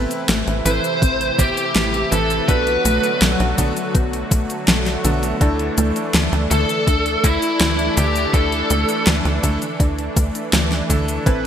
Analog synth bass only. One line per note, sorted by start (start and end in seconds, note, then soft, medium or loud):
0.29 0.44 A1 loud
0.47 0.62 A1 loud
0.65 0.80 A1 loud
1.02 1.31 A1 medium
1.39 1.53 A1 medium
1.75 2.05 A1 loud
2.12 2.41 A1 loud
2.48 2.78 B1 loud
2.85 3.00 B1 loud
3.21 3.36 B1 loud
3.40 3.54 B1 loud
3.58 3.73 B1 loud
3.95 4.24 B1 medium
4.31 4.46 B1 loud
4.68 4.97 B1 loud
5.04 5.34 B1 loud
5.41 5.70 D2 loud
5.78 5.92 D2 loud
6.14 6.29 D2 loud
6.32 6.47 D2 loud
6.51 6.65 D2 loud
6.87 7.17 D2 medium
7.24 7.39 D2 medium
7.60 7.90 D2 loud
7.97 8.27 D2 loud
8.33 8.63 D2 loud
8.70 8.85 D2 loud
9.07 9.22 D2 loud
9.25 9.40 D2 loud
9.43 9.58 D2 loud
9.80 10.09 D2 medium
10.17 10.31 D2 medium
10.53 10.83 D2 loud
10.90 11.19 D2 loud
11.26 11.47 A1 loud